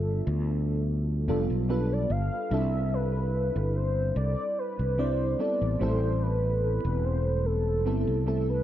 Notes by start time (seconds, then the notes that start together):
Already playing: G1 G3 B3 D4 F4 A4
0.27 D2
1.28 F1 G3 B3 D4 F4 A4
1.50 B1
1.69 G3 B3 D4 F4 A4 B4
1.93 D5
2.10 G1 F5
2.50 C2 G3 C4 D4 E4 A4 E5
2.94 B4
3.56 G1
3.76 C5
4.16 C2 D5
4.59 B4
4.79 C2
4.98 G3 C4 D4 E4 C5 D5
5.39 G3 B3 C4 E4 A4 D5
5.61 A1
5.79 A1 G3 A3 C4 E4 A4 C5
6.22 B4
6.63 B4
6.85 E1
7.05 C5
7.45 A4
7.85 G1 G3 B3 C4 E4 A4
8.07 C2
8.27 G3 A3 C4 E4 A4
8.50 B4